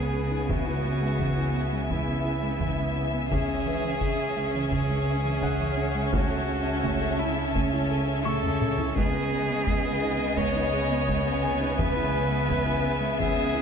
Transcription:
Already playing: double bass section C#2, cello section C#3, viola section B3, cello G#4, violin section B4 G#5, grand piano B4
0.13 synth arpeggio sound G#4
0.31 synth arpeggio sound D#4
0.49 synth arpeggio sound E3, cello F#4, violin section E5, taiko
0.67 synth arpeggio sound E4
0.84 synth arpeggio sound G#3
1.02 synth arpeggio sound G#3
1.19 synth arpeggio sound E3, taiko
1.38 synth arpeggio sound E4
1.54 synth arpeggio sound B3
1.72 synth arpeggio sound G#3
1.89 synth arpeggio sound E3, cello E4, taiko
2.07 synth arpeggio sound B3
2.25 synth arpeggio sound E4
2.43 synth arpeggio sound G#3
2.60 synth arpeggio sound E3, taiko
2.78 synth arpeggio sound G#3
2.95 synth arpeggio sound E4
3.14 synth arpeggio sound B3
3.30 double bass section C#2, cello section C#3, synth arpeggio sound C#3, viola section C#4, cello G#4, violin section G#5, taiko
3.49 synth arpeggio sound C#4
3.66 synth arpeggio sound E3, grand piano B4
3.83 synth arpeggio sound E3
4.01 synth arpeggio sound C#3, taiko
4.19 synth arpeggio sound C#4
4.36 synth arpeggio sound G#3
4.55 synth arpeggio sound E3
4.71 synth arpeggio sound C#3, cello G#4, taiko
4.90 synth arpeggio sound G#3
5.07 synth arpeggio sound C#4
5.25 synth arpeggio sound E3
5.42 synth arpeggio sound C#3, grand piano F#5, taiko
5.60 synth arpeggio sound E3
5.77 synth arpeggio sound C#4
5.95 synth arpeggio sound G#3
6.13 synth arpeggio sound A3, cello F#4, violin section E5 A5, taiko
6.31 synth arpeggio sound A4
6.49 synth arpeggio sound C#4
6.66 synth arpeggio sound C#4
6.84 synth arpeggio sound A3, taiko
7.01 synth arpeggio sound A4
7.19 cello E4, synth arpeggio sound E4
7.37 synth arpeggio sound C#4
7.53 synth arpeggio sound A3, cello C#4, taiko
7.74 synth arpeggio sound E4
7.90 synth arpeggio sound A4
8.08 synth arpeggio sound C#4
8.24 synth arpeggio sound A3, cello A4, grand piano C#6, taiko mid
8.43 synth arpeggio sound C#4, taiko low-mid
8.61 synth arpeggio sound A4, taiko mid
8.78 synth arpeggio sound E4, taiko low
8.96 double bass section C#2, cello section C#3, synth arpeggio sound G#3, viola section B3, cello G#4, violin section D#5 G#5, taiko
9.15 synth arpeggio sound G#4
9.32 synth arpeggio sound B3
9.50 synth arpeggio sound B3
9.67 synth arpeggio sound G#3, taiko
9.85 synth arpeggio sound G#4
10.03 synth arpeggio sound D#4
10.21 synth arpeggio sound B3
10.37 synth arpeggio sound G#3, cello C#5, taiko
10.56 synth arpeggio sound D#4
10.73 synth arpeggio sound G#4
10.91 synth arpeggio sound B3
11.08 synth arpeggio sound G#3, taiko
11.26 synth arpeggio sound B3
11.43 synth arpeggio sound G#4, grand piano G#5
11.61 synth arpeggio sound D#4
11.78 synth arpeggio sound E3, cello B4, violin section E5, taiko
11.96 synth arpeggio sound E4
12.14 synth arpeggio sound G#3
12.31 synth arpeggio sound G#3
12.48 synth arpeggio sound E3, taiko
12.66 synth arpeggio sound E4
12.84 synth arpeggio sound B3
13.01 synth arpeggio sound G#3
13.19 synth arpeggio sound E3, cello G#4, taiko
13.37 synth arpeggio sound B3
13.55 synth arpeggio sound E4

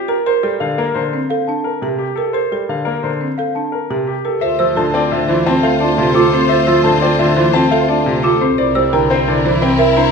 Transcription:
Already playing: grand piano G4
0.08 marimba A#4, grand piano A#4
0.26 marimba A#4, grand piano C5
0.43 grand piano G3, marimba A4
0.60 grand piano D3 F5
0.78 grand piano A#3 A#4
0.94 grand piano D3 C5
1.13 marimba C4
1.30 marimba A4, celesta F5
1.47 marimba D4, celesta A5
1.64 grand piano A#4
1.82 grand piano C3, marimba G4
1.98 grand piano G4
2.16 grand piano A4, marimba A#4
2.33 marimba A#4, grand piano C5
2.52 grand piano G3, marimba A4
2.69 grand piano D3 F5
2.85 grand piano A#3 A#4
3.03 grand piano D3 C5
3.21 marimba C4
3.38 marimba A4, celesta F5
3.55 marimba D4, celesta A5
3.72 grand piano A#4
3.90 grand piano C3, marimba G4
4.07 grand piano G4
4.25 grand piano A4, marimba A#4
4.41 double bass D2, clarinet F4, string section F4 C5, marimba C5, grand piano E5
4.59 grand piano F3, clarinet F4, marimba C5, celesta E6
4.76 grand piano D3 A5, clarinet F4, marimba A4, celesta A5
4.94 grand piano C4 D5, clarinet F4
5.12 grand piano D3 E5, clarinet F4
5.29 grand piano E3, clarinet F4, marimba C5
5.46 marimba C4, grand piano C4 A5, clarinet F4
5.63 clarinet F4, marimba A4, celesta E5, grand piano F5
5.80 marimba D4, clarinet F4, grand piano D5, celesta A5
5.98 grand piano C3, clarinet F4
6.14 clarinet F4, marimba F4, grand piano A4, celesta D6
6.32 marimba C4, clarinet F4, grand piano C5
6.49 clarinet F4, marimba C5, grand piano E5
6.67 grand piano F3, clarinet F4, marimba C5, celesta E6
6.83 grand piano D3 A5, clarinet F4, marimba A4, celesta A5
7.01 grand piano C4 D5, clarinet F4
7.19 grand piano D3 E5, clarinet F4
7.36 grand piano E3, clarinet F4, marimba C5
7.53 grand piano C4 A5, marimba C4, clarinet F4
7.71 clarinet F4, marimba A4, celesta E5, grand piano F5
7.88 marimba D4, clarinet F4, grand piano D5, celesta A5
8.06 grand piano C3, clarinet F4
8.23 clarinet F4, marimba F4, grand piano A4, celesta D6
8.41 marimba C4, grand piano C5
8.58 double bass C2, string section E4 A#4, clarinet E4, marimba C5, grand piano D5
8.75 grand piano G3, clarinet E4, marimba C5, celesta E6
8.93 grand piano D3 G5, clarinet E4, marimba A#4, celesta A#5
9.10 grand piano C4 C5, clarinet E4
9.28 grand piano D3 D5, clarinet E4
9.45 grand piano E3, clarinet E4, marimba C5
9.62 marimba C4, grand piano C4 G5, clarinet E4
9.79 clarinet E4, marimba A#4, grand piano E5, celesta E5
9.97 marimba D4, clarinet E4, grand piano C5, celesta A#5

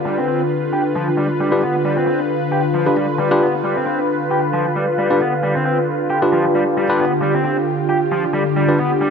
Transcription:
Already playing: analog synth pad D3 F4 B4
0.06 overdriven electric guitar G3
0.18 overdriven electric guitar C4
0.28 overdriven electric guitar C4
0.73 overdriven electric guitar G4
0.96 overdriven electric guitar F3
1.18 overdriven electric guitar G3
1.40 overdriven electric guitar G3
1.52 tine electric piano D4 F4 G4 B4
1.63 overdriven electric guitar B3
1.85 overdriven electric guitar G3
1.97 overdriven electric guitar C4
2.07 overdriven electric guitar C4
2.52 overdriven electric guitar G4
2.74 overdriven electric guitar F3
2.86 tine electric piano D4 F4 G4 B4
2.97 overdriven electric guitar G3
3.19 overdriven electric guitar G3
3.31 tine electric piano D4 F4 G4 B4
3.42 overdriven electric guitar B3
3.64 overdriven electric guitar G3
3.76 overdriven electric guitar C4
3.86 overdriven electric guitar C4
4.31 overdriven electric guitar G4
4.53 overdriven electric guitar F3
4.76 overdriven electric guitar G3
4.98 overdriven electric guitar G3
5.10 tine electric piano D4 F4 G4 B4
5.21 overdriven electric guitar B3
5.43 overdriven electric guitar G3
5.55 overdriven electric guitar C4
5.65 overdriven electric guitar C4
6.10 overdriven electric guitar G4
6.22 tine electric piano D4 F4 G4 B4
6.33 overdriven electric guitar F3
6.55 overdriven electric guitar G3, analog synth pad G4
6.77 overdriven electric guitar G3
6.89 tine electric piano D4 F4 G4 B4
7.00 overdriven electric guitar B3
7.22 overdriven electric guitar G3
7.34 overdriven electric guitar C4
7.45 overdriven electric guitar C4
7.89 overdriven electric guitar G4
8.12 overdriven electric guitar F3
8.34 overdriven electric guitar G3
8.57 overdriven electric guitar G3
8.69 tine electric piano D4 F4 G4 B4
8.79 overdriven electric guitar B3
9.01 overdriven electric guitar G3

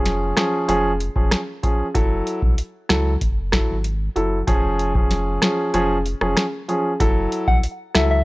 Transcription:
Already playing: sub bass F1, grand piano F3 C#4 G#4
0.06 snare, closed hi-hat
0.37 grand piano F3 C#4 G#4, cross-stick, snare, closed hi-hat
0.68 sub bass F1, grand piano F3 C#4 G#4, closed hi-hat
1.00 closed hi-hat
1.16 sub bass F1, grand piano F3 C#4 G#4, kick
1.31 cross-stick, snare, closed hi-hat
1.63 grand piano F3 C#4 G#4, kick, closed hi-hat
1.95 sub bass F#1, grand piano F#3 E4 A4, kick, closed hi-hat
2.27 closed hi-hat
2.42 sub bass B1, kick
2.58 closed hi-hat
2.89 sub bass C#2, grand piano F#3 E4 A4, cross-stick, snare, closed hi-hat
3.21 sub bass F#1, kick, closed hi-hat
3.52 grand piano F#3 E4 A4, kick, cross-stick, snare, closed hi-hat
3.69 sub bass G#1
3.84 closed hi-hat
4.16 sub bass F#1, grand piano F#3 E4 A4, closed hi-hat
4.47 sub bass F1, grand piano F3 C#4 G#4, kick, closed hi-hat
4.79 closed hi-hat
4.95 grand piano F3 C#4 G#4, kick
5.11 snare, closed hi-hat
5.42 grand piano F3 C#4 G#4, cross-stick, snare, closed hi-hat
5.74 sub bass F1, grand piano F3 C#4 G#4, closed hi-hat
6.06 closed hi-hat
6.21 sub bass F1, grand piano F3 C#4 G#4, cross-stick
6.37 cross-stick, snare, closed hi-hat
6.68 grand piano F3 C#4 G#4, closed hi-hat
7.00 sub bass F#1, grand piano F#3 E4 A4, kick, closed hi-hat
7.32 closed hi-hat
7.48 sub bass B1, soft synth lead F#5, kick
7.63 closed hi-hat
7.95 sub bass C#2, grand piano F#3 E4 A4, soft synth lead E5, cross-stick, snare, closed hi-hat
8.11 soft synth lead E5

